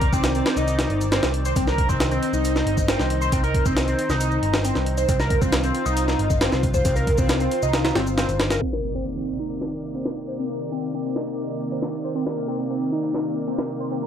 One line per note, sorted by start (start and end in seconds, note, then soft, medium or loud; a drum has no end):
0.00 8.58 D#3 medium
0.00 8.58 C4 medium
0.00 0.12 A#4 medium
0.00 1.55 D5 medium
0.00 kick medium
0.00 closed hi-hat medium
0.13 0.40 C2 medium
0.13 0.22 C4 loud
0.13 kick loud
0.13 shaker medium
0.24 snare loud
0.24 closed hi-hat medium
0.24 shaker medium
0.35 0.56 C4 medium
0.35 closed hi-hat soft
0.35 shaker soft
0.46 snare loud
0.46 closed hi-hat medium
0.57 0.84 C2 medium
0.57 1.00 D#4 medium
0.57 closed hi-hat soft
0.57 shaker medium
0.68 closed hi-hat medium
0.68 shaker medium
0.79 snare loud
0.79 closed hi-hat medium
0.79 shaker soft
0.90 1.17 G1 medium
0.90 closed hi-hat soft
1.01 closed hi-hat medium
1.01 shaker medium
1.12 1.23 C4 medium
1.12 snare loud
1.12 closed hi-hat medium
1.12 shaker medium
1.23 1.50 C2 medium
1.23 snare loud
1.23 closed hi-hat medium
1.23 shaker soft
1.34 closed hi-hat medium
1.45 1.51 C5 medium
1.45 closed hi-hat soft
1.45 shaker medium
1.56 1.83 C2 loud
1.56 1.62 C4 medium
1.56 5.08 D#4 medium
1.56 kick loud
1.56 closed hi-hat medium
1.56 shaker medium
1.67 1.88 A#4 medium
1.67 snare soft
1.67 shaker soft
1.78 kick medium
1.78 closed hi-hat medium
1.89 2.16 C2 medium
1.89 1.98 C4 loud
1.89 kick medium
1.89 shaker medium
2.00 snare loud
2.00 closed hi-hat medium
2.00 shaker soft
2.11 2.32 C4 medium
2.11 closed hi-hat soft
2.11 shaker soft
2.23 closed hi-hat medium
2.33 2.60 C2 medium
2.33 2.76 D#4 medium
2.33 shaker medium
2.44 closed hi-hat medium
2.44 shaker soft
2.56 snare soft
2.56 shaker soft
2.66 2.93 G1 medium
2.66 closed hi-hat medium
2.77 kick medium
2.77 shaker medium
2.88 2.99 C4 medium
2.88 snare loud
2.88 closed hi-hat medium
2.88 shaker soft
2.99 3.27 C2 medium
2.99 snare medium
2.99 shaker soft
3.10 closed hi-hat medium
3.21 3.27 C5 medium
3.21 shaker medium
3.32 3.59 C2 loud
3.32 3.38 C4 medium
3.32 kick loud
3.32 closed hi-hat medium
3.32 shaker medium
3.44 3.65 A#4 medium
3.44 closed hi-hat soft
3.44 shaker soft
3.55 kick loud
3.55 closed hi-hat medium
3.66 3.93 C2 loud
3.66 3.75 C4 loud
3.66 kick loud
3.66 shaker medium
3.77 snare loud
3.77 closed hi-hat medium
3.77 shaker soft
3.88 4.09 C4 medium
3.88 closed hi-hat soft
3.88 shaker soft
3.99 closed hi-hat medium
4.10 4.37 C2 medium
4.10 4.53 D#4 medium
4.10 snare soft
4.10 shaker medium
4.20 closed hi-hat medium
4.20 shaker medium
4.31 shaker soft
4.43 4.70 G1 medium
4.43 closed hi-hat medium
4.54 snare loud
4.54 shaker medium
4.64 4.75 C4 medium
4.64 closed hi-hat medium
4.64 shaker medium
4.75 5.03 C2 medium
4.75 snare soft
4.75 shaker soft
4.86 closed hi-hat medium
4.97 5.03 C5 medium
4.97 closed hi-hat soft
4.97 shaker medium
5.09 5.36 C2 loud
5.09 5.15 C4 medium
5.09 8.61 F4 medium
5.09 kick loud
5.09 closed hi-hat medium
5.09 shaker medium
5.20 5.41 A#4 medium
5.20 snare soft
5.20 shaker soft
5.30 kick medium
5.30 closed hi-hat medium
5.41 5.69 C2 medium
5.41 5.51 C4 loud
5.41 kick medium
5.41 shaker medium
5.53 snare loud
5.53 closed hi-hat medium
5.53 shaker medium
5.64 5.85 C4 medium
5.64 closed hi-hat soft
5.64 shaker soft
5.75 closed hi-hat medium
5.86 6.13 C2 medium
5.86 6.29 D#4 medium
5.86 shaker medium
5.97 closed hi-hat medium
5.97 shaker soft
6.08 snare soft
6.08 shaker soft
6.19 6.46 G1 medium
6.19 closed hi-hat medium
6.30 kick loud
6.30 shaker medium
6.41 6.52 C4 medium
6.41 snare loud
6.41 closed hi-hat medium
6.41 shaker medium
6.52 6.79 C2 loud
6.52 snare medium
6.52 shaker soft
6.63 kick medium
6.63 closed hi-hat medium
6.74 6.80 C5 medium
6.74 kick medium
6.74 shaker medium
6.85 7.12 C2 loud
6.85 6.91 C4 medium
6.85 kick loud
6.85 closed hi-hat medium
6.85 shaker medium
6.96 7.17 A#4 medium
6.96 closed hi-hat soft
6.96 shaker soft
7.07 kick medium
7.07 closed hi-hat medium
7.18 7.45 C2 loud
7.18 7.28 C4 loud
7.18 kick loud
7.18 shaker medium
7.29 snare loud
7.29 closed hi-hat medium
7.29 shaker medium
7.40 7.61 C4 medium
7.40 closed hi-hat soft
7.40 shaker soft
7.51 closed hi-hat medium
7.62 7.90 C2 loud
7.62 7.95 D#4 medium
7.62 shaker medium
7.73 snare loud
7.73 closed hi-hat medium
7.73 shaker medium
7.85 snare loud
7.85 closed hi-hat medium
7.85 shaker soft
7.95 8.23 G1 medium
7.95 8.06 C4 medium
7.95 snare loud
7.95 closed hi-hat medium
8.07 shaker medium
8.17 8.27 C4 medium
8.17 snare loud
8.17 closed hi-hat medium
8.17 shaker medium
8.29 8.56 G1 loud
8.29 closed hi-hat soft
8.29 shaker soft
8.40 snare loud
8.40 closed hi-hat medium
8.50 8.61 A#4 medium
8.50 snare loud
8.50 closed hi-hat medium
8.50 shaker medium
8.62 14.07 C3 medium
8.62 14.07 D#3 medium
8.62 14.07 A#3 medium
8.62 8.67 C4 medium
8.62 14.07 D5 medium
8.62 closed hi-hat medium
8.62 impact medium
8.73 8.94 A#4 medium
8.73 snare soft
8.84 closed hi-hat medium
8.95 9.04 C4 loud
9.06 closed hi-hat medium
9.17 9.38 C4 medium
9.17 closed hi-hat soft
9.28 closed hi-hat medium
9.39 9.82 D#4 medium
9.50 closed hi-hat medium
9.61 snare soft
9.72 closed hi-hat medium
9.94 10.05 C4 medium
9.94 closed hi-hat medium
10.05 snare medium
10.16 closed hi-hat medium
10.28 10.33 C5 medium
10.39 10.44 C4 medium
10.39 closed hi-hat medium
10.50 10.71 A#4 medium
10.50 closed hi-hat soft
10.60 closed hi-hat medium
10.72 10.81 C4 loud
10.83 closed hi-hat medium
10.94 11.15 C4 medium
10.94 closed hi-hat soft
11.05 closed hi-hat medium
11.16 11.59 D#4 medium
11.16 snare soft
11.27 closed hi-hat medium
11.49 closed hi-hat medium
11.71 11.82 C4 medium
11.71 closed hi-hat medium
11.82 snare soft
11.93 closed hi-hat medium
12.04 12.10 C5 medium
12.04 closed hi-hat soft
12.15 12.21 C4 medium
12.15 closed hi-hat medium
12.26 12.47 A#4 medium
12.26 snare soft
12.37 closed hi-hat medium
12.48 12.57 C4 loud
12.60 closed hi-hat medium
12.70 12.91 C4 medium
12.70 closed hi-hat soft
12.81 closed hi-hat medium
12.92 13.35 D#4 medium
13.03 closed hi-hat medium
13.14 snare soft
13.25 closed hi-hat medium
13.47 13.58 C4 medium
13.47 closed hi-hat medium
13.58 snare medium
13.69 closed hi-hat medium
13.80 13.86 C5 medium
13.91 13.97 C4 medium
13.91 closed hi-hat medium
14.02 14.07 A#4 medium
14.02 closed hi-hat soft